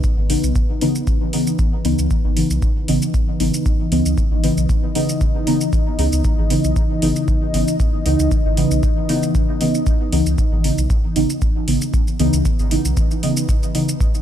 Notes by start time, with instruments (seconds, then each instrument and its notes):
Already playing: analog synth pad E3 D#4 B4
0.04 kick, shaker
0.18 sub bass G#1
0.30 synth stab C#3 E3 B3 D#4, open hi-hat
0.44 sub bass B1, shaker
0.56 kick, shaker
0.81 synth stab C#3 E3 B3 D#4, open hi-hat
0.95 shaker
1.07 kick, shaker
1.33 synth stab C#3 E3 B3 D#4, open hi-hat
1.47 shaker
1.59 kick, shaker
1.85 sub bass C#2, synth stab C#3 E3 B3 D#4, open hi-hat
1.99 sub bass C#2, shaker
2.11 kick, shaker
2.24 sub bass G#1
2.37 synth stab C#3 E3 B3 D#4, open hi-hat
2.50 sub bass B1, shaker
2.62 kick, shaker
2.88 sub bass G#1, synth stab C#3 E3 B3 D#4, open hi-hat
3.02 shaker
3.14 kick, shaker
3.40 sub bass G#1, synth stab C#3 E3 B3 D#4, open hi-hat
3.54 shaker
3.66 analog synth pad D#5, kick, shaker
3.92 sub bass C#2, synth stab C#3 E3 B3 D#4, open hi-hat
4.05 sub bass C#2, shaker
4.18 kick, shaker
4.31 sub bass G#1
4.43 synth stab C#3 E3 B3 D#4, open hi-hat
4.57 sub bass B1, shaker
4.69 kick, shaker
4.95 synth stab C#3 E3 B3 D#4, open hi-hat
5.09 shaker
5.21 kick, shaker
5.47 synth stab C#3 E3 B3 D#4, open hi-hat
5.61 shaker
5.73 kick, shaker
5.99 sub bass C#2, synth stab C#3 E3 B3 D#4, open hi-hat
6.12 sub bass C#2, shaker
6.25 kick, shaker
6.38 sub bass G#1
6.50 synth stab C#3 E3 B3 D#4, open hi-hat
6.64 sub bass B1, shaker
6.76 kick, shaker
7.02 sub bass G#1, synth stab C#3 E3 B3 D#4, open hi-hat
7.16 shaker
7.28 kick, shaker
7.54 sub bass G#1, synth stab C#3 E3 B3 D#4, open hi-hat
7.68 shaker
7.80 kick, shaker
8.06 sub bass C#2, synth stab C#3 E3 B3 D#4, open hi-hat
8.19 sub bass C#2, shaker
8.31 kick, shaker
8.45 sub bass G#1
8.57 synth stab C#3 E3 B3 D#4, open hi-hat
8.71 sub bass B1, shaker
8.83 kick, shaker
9.09 synth stab C#3 E3 B3 D#4, open hi-hat
9.23 shaker
9.35 kick, shaker
9.61 synth stab C#3 E3 B3 D#4, open hi-hat
9.75 shaker
9.87 kick, shaker
10.12 sub bass C#2, synth stab C#3 E3 B3 D#4, open hi-hat
10.26 sub bass C#2, shaker
10.38 kick, shaker
10.52 sub bass G#1
10.64 synth stab C#3 E3 B3 D#4, open hi-hat
10.78 sub bass B1, shaker
10.90 kick, shaker
11.16 sub bass G#1, synth stab C#3 E3 B3 D#4, open hi-hat
11.30 shaker
11.42 kick, shaker
11.68 sub bass G#1, synth stab C#3 E3 B3 D#4, open hi-hat
11.82 shaker
11.94 analog synth pad E3 D#4 B4, kick, shaker
12.08 shaker
12.19 sub bass C#2, synth stab C#3 E3 B3 D#4, open hi-hat
12.33 sub bass C#2, shaker
12.45 kick, shaker
12.59 sub bass G#1, shaker
12.71 synth stab C#3 E3 B3 D#4, open hi-hat
12.85 sub bass B1, shaker
12.97 kick, shaker
13.11 shaker
13.23 synth stab C#3 E3 B3 D#4, open hi-hat
13.37 shaker
13.49 kick, shaker
13.63 shaker
13.75 synth stab C#3 E3 B3 D#4, open hi-hat
13.89 shaker
14.01 kick, shaker
14.14 shaker